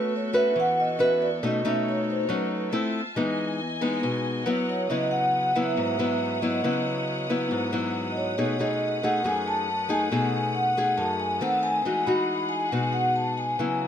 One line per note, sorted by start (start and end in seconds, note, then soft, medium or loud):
0.00 0.53 A3 medium
0.00 2.71 B3 medium
0.00 0.12 C#4 medium
0.00 0.12 F#4 medium
0.00 1.41 F#4 medium
0.00 2.71 A4 medium
0.00 0.12 B4 medium
0.00 0.13 B4 medium
0.00 1.38 C#6 medium
0.16 0.35 C#5 medium
0.33 0.95 C#4 medium
0.33 0.96 F#4 medium
0.33 0.96 B4 medium
0.33 0.56 E5 medium
0.56 1.40 E3 medium
0.60 0.79 F#5 loud
0.80 1.00 D#5 medium
0.99 1.28 C#4 medium
0.99 1.29 F#4 medium
0.99 1.29 B4 medium
1.03 1.22 E5 medium
1.22 1.42 D5 medium
1.43 2.28 B2 medium
1.43 1.61 A3 medium
1.43 1.61 C#4 medium
1.43 2.72 D#4 medium
1.43 1.61 D#4 medium
1.43 2.72 C#5 medium
1.43 1.66 D#5 medium
1.65 2.26 A3 medium
1.65 2.26 C#4 medium
1.65 2.27 D#4 medium
1.65 1.86 E5 medium
1.89 2.08 C#5 medium
2.10 2.30 C5 medium
2.29 2.70 F#3 medium
2.29 2.71 A3 medium
2.29 2.71 C#4 medium
2.29 2.71 D#4 medium
2.33 2.72 B4 medium
2.71 3.01 A3 medium
2.71 3.01 C4 medium
2.71 3.01 E4 medium
2.71 3.15 F4 medium
2.71 3.15 E5 medium
2.71 3.15 A5 medium
3.15 4.01 E3 medium
3.15 3.59 G#3 medium
3.15 3.60 B3 medium
3.15 3.60 D#4 medium
3.15 4.88 D#5 medium
3.15 4.45 G#5 medium
3.81 4.43 G#3 medium
3.81 4.43 B3 medium
3.81 4.44 D#4 medium
4.03 4.45 B2 medium
4.45 4.88 F#3 medium
4.45 4.88 B3 medium
4.45 4.89 E4 medium
4.45 4.89 B4 medium
4.45 4.89 C#5 medium
4.45 4.89 F#5 medium
4.69 4.91 C#5 medium
4.90 5.75 C#3 medium
4.90 5.52 F#3 soft
4.90 5.52 B3 medium
4.90 8.35 E4 medium
4.90 5.52 E4 medium
4.90 11.39 B4 medium
4.90 8.35 C#5 medium
4.90 5.10 D#5 medium
4.90 8.35 F#5 medium
4.90 13.88 D#6 medium
5.11 5.56 F#5 medium
5.55 5.96 F#3 medium
5.55 5.96 B3 medium
5.55 5.96 E4 medium
5.55 6.38 E5 medium
5.77 6.62 G#2 medium
5.99 6.39 F#3 medium
5.99 6.39 B3 medium
5.99 6.39 E4 medium
6.42 6.61 F#3 medium
6.42 6.61 B3 medium
6.42 6.61 E4 medium
6.42 7.25 D#5 medium
6.64 7.49 C#3 medium
6.64 7.26 F#3 medium
6.64 7.26 B3 medium
6.64 7.26 E4 medium
7.30 7.70 F#3 medium
7.30 7.70 B3 medium
7.30 7.70 E4 medium
7.51 8.36 G#2 medium
7.72 8.35 F#3 medium
7.72 8.35 B3 medium
7.72 8.35 E4 medium
8.11 8.17 D#5 medium
8.17 8.62 C#5 medium
8.38 9.23 B2 medium
8.38 8.56 A3 soft
8.38 11.40 C#4 medium
8.38 8.57 D#4 medium
8.38 8.57 G#4 medium
8.38 11.40 F#5 medium
8.59 9.00 A3 medium
8.59 9.00 D#4 medium
8.59 9.00 G#4 medium
8.59 9.05 D#5 medium
9.03 9.22 A3 medium
9.03 9.22 D#4 medium
9.03 9.22 G#4 medium
9.03 9.24 F#5 medium
9.24 10.09 F#2 medium
9.24 9.68 A3 soft
9.24 9.68 D#4 medium
9.24 9.69 G#4 medium
9.24 9.48 G#5 medium
9.48 9.92 A5 medium
9.89 10.08 A3 medium
9.89 10.08 D#4 medium
9.89 10.08 G#4 medium
9.89 10.58 G#5 medium
10.12 10.97 B2 medium
10.12 10.73 A3 medium
10.12 10.74 D#4 medium
10.12 10.74 G#4 medium
10.55 11.00 F#5 medium
10.77 11.39 A3 medium
10.77 11.39 D#4 medium
10.77 11.39 G#4 medium
10.98 11.40 F#2 medium
10.98 11.18 A5 medium
11.20 11.43 G#5 medium
11.41 11.84 D#3 medium
11.41 11.84 A3 medium
11.41 11.85 C4 medium
11.41 11.84 C4 medium
11.41 11.85 B4 medium
11.41 11.64 F#5 medium
11.41 11.85 A5 medium
11.63 12.08 G#5 medium
11.85 12.70 E3 medium
11.85 12.04 G#3 medium
11.85 12.04 D#4 medium
11.85 12.04 F#4 medium
11.85 13.58 G#4 medium
11.85 13.58 F#5 medium
12.07 12.69 G#3 medium
12.07 12.69 D#4 medium
12.07 12.70 F#4 medium
12.07 12.52 B5 medium
12.49 12.95 G#5 medium
12.72 13.57 B2 medium
12.72 13.56 G#3 medium
12.72 13.56 D#4 medium
12.72 13.56 F#4 medium
12.93 13.14 F#5 medium
13.16 13.36 A5 medium
13.38 13.88 G#5 medium
13.59 13.88 C#3 medium
13.59 13.88 F#3 medium
13.59 13.88 B3 medium
13.59 13.88 C#4 medium
13.59 13.88 E4 medium
13.59 13.88 F#4 medium
13.59 13.88 B4 medium